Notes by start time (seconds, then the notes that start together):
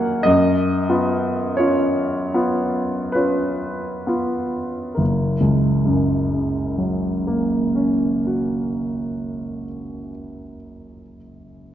Already playing: F#2 A#3 C#4 F#4 F5 F#5 G#5
0.23 F#2 D#5
0.89 B3 F4
1.57 C#4 F4 C#5
2.34 B3 F4
3.12 C#4 F4 B4
4.07 B3 F4
4.95 F#1 A#4
5.41 C#2
5.86 F#2
6.33 C#3
6.78 F#3
7.27 A#3
7.75 C#4
8.27 F#4